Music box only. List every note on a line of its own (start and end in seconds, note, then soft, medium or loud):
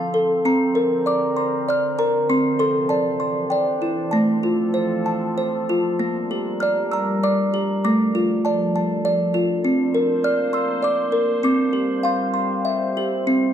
0.00 0.13 A4 medium
0.00 0.45 F5 medium
0.00 0.41 A5 medium
0.00 0.45 C6 medium
0.14 0.45 A4 medium
0.45 1.68 C4 medium
0.45 1.09 A#5 medium
0.75 1.98 A#4 medium
1.06 1.67 D5 medium
1.06 1.70 D6 medium
1.36 2.28 C6 medium
1.68 2.30 D5 medium
1.68 2.00 F6 medium
1.99 2.29 A#4 medium
1.99 2.30 A#5 medium
2.29 2.90 C4 medium
2.29 2.58 C6 medium
2.59 2.90 A4 medium
2.59 2.88 C6 medium
2.89 3.50 D5 medium
2.89 3.52 A5 medium
3.20 4.12 C6 medium
3.50 4.12 D5 medium
3.50 4.14 G5 medium
3.82 4.12 E4 medium
4.11 5.37 A3 medium
4.11 5.05 A5 medium
4.43 5.68 F4 medium
4.74 5.36 C5 medium
5.06 6.00 A5 medium
5.38 6.00 C5 medium
5.69 6.00 F4 medium
5.99 7.24 A#3 medium
6.31 7.52 G4 medium
6.60 7.22 D5 medium
6.60 6.93 F6 medium
6.91 7.85 A#5 medium
6.91 7.24 E6 medium
7.23 7.84 D5 medium
7.23 7.83 D6 medium
7.54 7.84 G4 medium
7.84 9.05 A3 medium
7.84 8.41 D6 medium
8.15 9.33 F4 medium
8.45 9.04 D5 medium
8.45 8.74 A5 medium
8.76 9.64 A5 medium
9.05 9.64 D5 medium
9.34 9.64 F4 medium
9.64 10.84 C4 medium
9.94 11.11 A#4 medium
10.24 10.81 D5 medium
10.24 10.55 F6 loud
10.53 11.43 C6 medium
10.53 10.81 E6 medium
10.82 11.43 D5 medium
10.82 11.40 D6 medium
11.12 11.43 A#4 medium
11.43 12.65 C4 medium
11.43 12.00 D6 medium
11.73 12.65 G4 medium
12.03 12.65 F5 medium
12.03 12.32 C6 medium
12.34 12.65 C6 medium
12.65 13.28 E5 medium
12.97 13.28 G4 medium
13.27 13.53 C4 medium